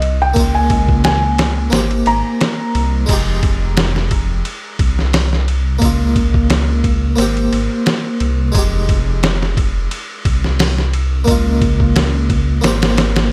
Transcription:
0.00 0.33 C2 medium
0.00 0.29 G#3 medium
0.00 0.32 G4 medium
0.00 0.16 D#5 medium
0.00 ride medium
0.22 0.52 G5 medium
0.34 1.70 C#2 medium
0.34 1.65 A#3 medium
0.34 1.67 D#4 medium
0.34 kick loud
0.34 ride medium
0.40 1.68 F4 medium
0.55 1.00 G#5 medium
0.70 kick loud
0.70 ride medium
0.89 kick medium
1.04 1.52 G#5 medium
1.04 snare loud
1.04 ride medium
1.38 snare loud
1.38 ride medium
1.70 2.03 G#1 medium
1.70 3.02 A#3 medium
1.70 3.03 C4 medium
1.70 snare loud
1.70 ride medium
1.76 3.05 G4 medium
1.91 ride soft
2.06 2.23 G#1 medium
2.06 2.97 A#5 medium
2.06 ride medium
2.41 snare loud
2.41 ride medium
2.75 3.05 C2 loud
2.75 ride medium
3.06 4.42 F1 medium
3.06 5.74 G#3 medium
3.06 5.76 D#4 medium
3.06 kick loud
3.06 crash medium
3.06 ride medium
3.12 5.77 G4 medium
3.43 kick medium
3.43 ride medium
3.77 snare loud
3.77 ride medium
3.96 snare soft
4.11 kick medium
4.11 ride medium
4.45 ride medium
4.79 5.79 C2 medium
4.79 kick medium
4.79 ride medium
4.99 snare soft
5.13 snare loud
5.13 open hi-hat medium
5.33 snare soft
5.48 ride medium
5.79 7.15 C#2 medium
5.79 7.10 A#3 medium
5.79 7.12 D#4 medium
5.79 kick loud
5.79 ride medium
5.85 7.13 F4 medium
6.16 kick medium
6.16 ride medium
6.34 kick medium
6.50 snare loud
6.50 ride medium
6.84 kick medium
6.84 ride medium
7.16 7.49 G#1 medium
7.16 8.47 A#3 medium
7.16 8.48 C4 medium
7.16 ride medium
7.21 8.50 G4 medium
7.37 ride soft
7.53 7.69 G#1 medium
7.53 ride medium
7.86 snare loud
7.86 ride medium
8.20 8.51 C2 loud
8.20 ride medium
8.52 9.88 F1 medium
8.52 11.20 G#3 medium
8.52 11.21 D#4 medium
8.52 kick loud
8.52 ride medium
8.58 11.23 G4 loud
8.89 kick medium
8.89 ride medium
9.23 snare loud
9.23 ride medium
9.43 snare soft
9.57 kick medium
9.57 ride medium
9.91 ride medium
10.25 11.24 C2 medium
10.25 kick medium
10.25 ride medium
10.44 snare soft
10.59 snare loud
10.59 open hi-hat medium
10.78 snare soft
10.93 ride medium
11.24 12.61 C#2 medium
11.24 12.56 A#3 medium
11.24 12.58 D#4 medium
11.24 kick loud
11.24 ride medium
11.31 12.59 F4 medium
11.62 kick loud
11.62 ride medium
11.80 kick medium
11.96 snare loud
11.96 ride medium
12.30 kick medium
12.30 ride medium
12.61 13.32 G#1 medium
12.61 13.32 A#3 medium
12.61 13.32 C4 medium
12.61 snare loud
12.61 ride medium
12.67 13.32 G4 medium
12.82 snare loud
12.82 ride medium
12.97 snare loud
12.97 ride medium
13.16 snare loud
13.16 ride medium

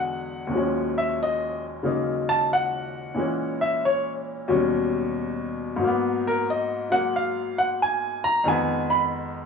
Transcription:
0.00 0.50 E2 medium
0.00 0.51 D3 soft
0.00 0.52 F#3 medium
0.00 0.53 G#3 medium
0.00 0.94 F#5 medium
0.47 3.14 D#2 medium
0.47 3.13 A#2 soft
0.47 3.16 F3 soft
0.53 1.82 F#3 soft
0.53 1.83 G#3 soft
0.57 3.18 C#4 medium
0.98 1.18 E5 medium
1.23 1.63 D#5 medium
1.83 3.16 C#3 soft
1.83 3.16 F#3 soft
1.83 3.16 G#3 soft
1.83 3.17 A#3 soft
1.83 3.17 D#4 medium
2.29 2.50 A5 loud
2.53 3.58 F#5 medium
3.15 4.47 A#2 medium
3.15 4.48 E3 soft
3.15 4.49 G#3 soft
3.20 4.48 C#4 medium
3.61 3.82 E5 medium
3.85 4.11 C#5 medium
4.48 5.80 D#2 medium
4.48 5.81 B2 medium
4.48 5.78 F#3 medium
4.48 5.81 G3 medium
4.48 5.81 C#4 medium
5.76 8.43 G#2 medium
5.76 6.89 F#3 medium
5.84 6.92 A#3 medium
5.84 8.47 B3 medium
6.27 6.47 A#4 medium
6.50 6.91 D#5 medium
6.90 8.45 F#3 soft
6.90 8.46 G#3 soft
6.90 8.46 A#3 soft
6.90 7.13 F#5 loud
7.16 7.57 F5 medium
7.58 7.79 F#5 medium
7.82 8.23 G#5 loud
8.24 8.45 A#5 loud
8.44 9.46 F2 medium
8.44 9.46 D#3 medium
8.44 9.46 G#3 medium
8.48 9.46 B3 medium
8.48 8.89 G#5 medium
8.90 9.03 B5 loud

